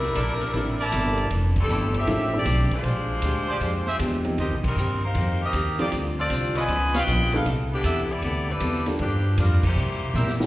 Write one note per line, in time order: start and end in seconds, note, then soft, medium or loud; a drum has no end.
0.00 0.14 C2 medium
0.00 1.18 G3 medium
0.00 1.19 D4 medium
0.00 1.19 E4 medium
0.00 1.18 A#4 medium
0.00 snare soft
0.15 0.53 A#1 medium
0.15 0.42 C3 medium
0.15 0.43 A#3 medium
0.15 0.33 E4 medium
0.15 0.43 E4 medium
0.15 0.33 A4 medium
0.15 0.43 A4 medium
0.15 0.33 A#4 medium
0.15 0.33 D5 medium
0.15 kick soft
0.15 hi-hat pedal medium
0.15 ride medium
0.41 snare soft
0.41 ride soft
0.54 0.91 A1 medium
0.54 0.81 C3 soft
0.54 1.13 G3 soft
0.54 1.13 A#3 soft
0.54 0.82 A#3 medium
0.54 1.13 C4 soft
0.54 1.13 D4 soft
0.54 1.13 E4 soft
0.54 0.82 E4 medium
0.54 0.82 A4 medium
0.54 kick soft
0.54 ride medium
0.79 1.28 E4 loud
0.79 1.28 A#4 medium
0.79 1.28 D5 loud
0.79 1.28 A5 medium
0.92 1.29 G1 medium
0.92 1.19 C3 medium
0.92 1.19 A#3 medium
0.92 1.20 E4 medium
0.92 1.20 A4 medium
0.92 kick soft
0.92 hi-hat pedal medium
0.92 ride medium
1.17 ride soft
1.30 1.67 F1 medium
1.30 1.58 F2 soft
1.30 1.58 E3 soft
1.30 1.59 A3 medium
1.30 1.59 D4 medium
1.30 kick soft
1.30 ride medium
1.56 1.94 G3 medium
1.56 kick medium
1.56 crash medium
1.60 1.94 C4 medium
1.60 1.94 E4 medium
1.60 1.94 A4 medium
1.68 2.06 G1 medium
1.68 1.96 F2 medium
1.68 1.97 E3 medium
1.68 1.97 A3 medium
1.68 1.97 D4 medium
1.68 1.86 E4 medium
1.68 1.86 G4 medium
1.68 1.86 A4 medium
1.68 1.86 D5 medium
1.68 hi-hat pedal soft
1.94 2.35 C4 medium
1.94 2.35 G4 medium
1.94 2.35 A4 medium
1.94 2.35 E5 loud
1.94 ride soft
2.07 2.45 A1 medium
2.07 2.34 F2 soft
2.07 2.35 E3 soft
2.07 2.30 G#3 soft
2.07 2.35 A3 medium
2.07 2.30 A#3 soft
2.07 2.30 C#4 soft
2.07 2.36 D4 soft
2.07 2.30 D#4 soft
2.07 2.30 F4 medium
2.07 kick soft
2.07 ride medium
2.33 2.67 G3 medium
2.33 2.66 A3 soft
2.33 2.67 C4 medium
2.33 2.71 C4 medium
2.33 2.67 D4 soft
2.33 2.67 E4 medium
2.33 2.71 A4 medium
2.33 2.71 D5 medium
2.37 2.71 G4 medium
2.45 2.69 B1 medium
2.45 2.72 F2 medium
2.45 2.73 E3 soft
2.45 2.73 A3 medium
2.45 2.73 D4 medium
2.45 kick soft
2.45 snare soft
2.45 hi-hat pedal medium
2.45 ride medium
2.71 4.22 G#3 medium
2.71 4.22 D4 medium
2.71 4.22 F4 medium
2.71 4.22 C5 medium
2.71 kick soft
2.71 ride soft
2.83 3.21 A#1 medium
2.83 3.11 A#2 soft
2.83 3.11 G#3 soft
2.83 3.12 D4 soft
2.83 3.12 G4 soft
2.83 kick soft
2.83 ride medium
3.22 3.60 D2 medium
3.22 3.50 A#2 medium
3.22 3.50 G#3 medium
3.22 3.51 D4 medium
3.22 3.51 G4 medium
3.22 kick soft
3.22 hi-hat pedal medium
3.22 ride medium
3.48 3.57 G4 medium
3.48 3.57 G#4 medium
3.48 3.57 C5 medium
3.48 3.57 D5 loud
3.60 3.98 F2 medium
3.60 3.87 A#2 medium
3.60 3.88 G#3 soft
3.60 3.88 D4 medium
3.60 3.89 G4 medium
3.60 kick soft
3.60 ride soft
3.86 3.95 G4 medium
3.86 3.95 G#4 medium
3.86 3.95 C5 medium
3.86 3.95 E5 loud
3.86 snare soft
3.99 4.37 E2 medium
3.99 4.26 A#2 medium
3.99 4.27 G#3 medium
3.99 4.27 D4 medium
3.99 4.27 G4 medium
3.99 kick soft
3.99 hi-hat pedal medium
3.99 ride medium
4.25 4.37 F3 medium
4.25 4.37 A#3 soft
4.25 4.37 C4 medium
4.25 4.37 D#4 medium
4.25 4.37 G4 medium
4.25 ride soft
4.38 4.51 D#2 medium
4.38 4.65 D#3 soft
4.38 4.66 A#3 soft
4.38 4.66 C4 soft
4.38 4.55 G4 medium
4.38 4.55 A#4 medium
4.38 4.55 C5 medium
4.38 4.55 D#5 medium
4.38 kick soft
4.38 ride medium
4.42 4.67 G4 medium
4.51 4.63 C2 medium
4.63 4.75 A#1 medium
4.63 5.00 G3 medium
4.63 5.01 C4 medium
4.63 5.01 D#4 medium
4.63 5.01 A#4 medium
4.63 kick medium
4.63 crash medium
4.76 5.14 G2 medium
4.76 5.04 D#3 medium
4.76 5.05 A#3 medium
4.76 5.05 C4 medium
4.76 5.05 G4 medium
4.76 hi-hat pedal medium
5.04 5.42 D#4 medium
5.04 5.42 A#4 medium
5.04 5.42 C5 medium
5.04 5.42 F5 medium
5.15 5.52 F2 medium
5.15 5.42 D#3 soft
5.15 5.42 A#3 soft
5.15 5.43 C4 medium
5.15 5.43 G4 medium
5.15 kick soft
5.15 ride medium
5.42 5.77 C4 medium
5.42 5.77 G4 medium
5.42 5.77 A#4 medium
5.42 5.78 D#5 loud
5.53 5.91 D#2 medium
5.53 5.80 D#3 medium
5.53 5.81 A#3 medium
5.53 5.81 C4 medium
5.53 5.81 G4 medium
5.53 kick soft
5.53 hi-hat pedal soft
5.53 ride medium
5.78 5.91 F3 medium
5.78 5.91 A3 medium
5.78 5.93 A#3 medium
5.78 5.91 C4 medium
5.78 5.93 D#4 medium
5.78 5.91 E4 soft
5.78 5.87 F4 medium
5.78 5.87 G4 medium
5.78 5.91 G4 medium
5.78 5.93 G4 medium
5.78 5.87 C5 medium
5.78 5.87 D5 loud
5.78 5.93 D5 medium
5.78 ride soft
5.91 6.29 D2 medium
5.91 6.18 D3 soft
5.91 6.19 G3 soft
5.91 6.19 C4 soft
5.91 6.20 F4 soft
5.91 kick soft
5.91 ride medium
6.19 6.54 C4 medium
6.19 6.54 F4 medium
6.19 6.54 A4 medium
6.19 6.54 D5 medium
6.30 6.67 C2 medium
6.30 6.58 D3 medium
6.30 6.58 G3 medium
6.30 6.58 C4 medium
6.30 kick soft
6.30 hi-hat pedal medium
6.30 ride medium
6.34 6.59 F4 medium
6.55 6.64 F4 medium
6.55 6.95 F4 medium
6.55 6.64 B4 medium
6.55 6.95 B4 medium
6.55 6.64 C#5 medium
6.55 6.64 D#5 medium
6.55 6.95 D#5 medium
6.55 6.95 G#5 loud
6.55 ride medium
6.68 7.06 C#2 medium
6.68 6.95 C#3 soft
6.68 6.96 F3 medium
6.68 6.96 B3 soft
6.68 6.97 D#4 medium
6.68 kick soft
6.68 ride medium
6.93 7.02 F4 loud
6.93 7.33 F4 medium
6.93 7.02 B4 medium
6.93 7.33 B4 medium
6.93 7.02 C#5 medium
6.93 7.33 D#5 medium
6.93 7.02 F5 loud
6.93 7.33 G5 loud
6.93 snare medium
6.93 ride medium
7.06 7.44 A#1 loud
7.06 7.34 C#3 medium
7.06 7.35 F3 medium
7.06 7.35 B3 medium
7.06 7.35 D#4 medium
7.06 hi-hat pedal medium
7.32 7.44 G3 medium
7.32 7.44 B3 medium
7.32 7.44 D4 medium
7.32 7.46 D#4 medium
7.32 7.45 E4 medium
7.32 7.46 G#4 medium
7.32 7.45 A4 medium
7.32 7.46 B4 medium
7.32 7.46 F5 medium
7.32 ride soft
7.45 7.83 C2 medium
7.45 7.72 C3 soft
7.45 7.73 B3 soft
7.45 7.73 E4 medium
7.45 7.74 A4 medium
7.45 kick soft
7.45 ride medium
7.72 8.08 E3 medium
7.72 8.07 B3 medium
7.72 8.07 D4 medium
7.72 8.07 G4 medium
7.83 8.21 E2 medium
7.83 8.11 C3 medium
7.83 8.11 B3 medium
7.83 8.12 E4 medium
7.83 8.01 A4 medium
7.83 8.12 A4 medium
7.83 8.01 B4 medium
7.83 8.01 D5 medium
7.83 8.01 E5 medium
7.83 kick soft
7.83 hi-hat pedal medium
7.83 ride medium
8.10 8.48 B3 medium
8.10 8.48 E4 medium
8.10 8.48 G4 medium
8.10 8.48 D5 medium
8.22 8.59 D2 medium
8.22 8.49 C3 medium
8.22 8.50 B3 soft
8.22 8.50 E4 medium
8.22 8.51 A4 medium
8.22 kick soft
8.22 ride medium
8.49 8.87 G3 medium
8.49 8.87 D4 medium
8.49 8.87 E4 medium
8.49 8.87 B4 medium
8.60 8.98 E2 medium
8.60 8.88 C3 medium
8.60 8.88 B3 medium
8.60 8.89 E4 medium
8.60 8.89 A4 medium
8.60 kick soft
8.60 hi-hat pedal medium
8.60 ride medium
8.74 snare soft
8.86 8.98 G3 medium
8.86 8.98 A#3 medium
8.86 8.98 D4 medium
8.86 8.98 F4 medium
8.86 8.98 A4 medium
8.86 snare soft
8.86 ride soft
8.99 9.36 G2 medium
8.99 9.26 G2 soft
8.99 9.27 F3 soft
8.99 9.36 F3 medium
8.99 9.36 A#3 medium
8.99 9.27 A#3 soft
8.99 9.36 D4 medium
8.99 9.27 D4 soft
8.99 9.36 G4 medium
8.99 kick soft
8.99 ride medium
9.37 9.75 F2 medium
9.37 9.65 G2 medium
9.37 9.65 F3 medium
9.37 9.62 G3 medium
9.37 9.65 A#3 medium
9.37 9.62 D4 medium
9.37 9.65 D4 medium
9.37 9.62 F4 medium
9.37 9.62 A#4 medium
9.37 kick soft
9.37 hi-hat pedal medium
9.37 ride medium
9.63 10.37 A#3 medium
9.63 10.37 E4 medium
9.63 10.37 G4 medium
9.63 10.37 C5 medium
9.63 kick medium
9.63 crash medium
9.76 10.13 C3 medium
9.76 10.03 C3 soft
9.76 10.03 G3 soft
9.76 10.04 A#3 soft
9.80 10.04 E4 soft
10.14 10.46 A#2 medium
10.14 10.42 C3 medium
10.14 10.42 G3 medium
10.14 10.43 A#3 medium
10.14 10.32 G4 medium
10.14 10.32 A#4 medium
10.14 10.32 C5 medium
10.14 10.32 E5 medium
10.14 hi-hat pedal medium
10.14 high tom soft
10.18 10.43 E4 medium
10.27 snare medium
10.40 10.46 G3 medium
10.40 10.46 C4 soft
10.40 10.46 E4 medium
10.40 10.46 F4 medium
10.40 10.46 A4 medium
10.40 snare medium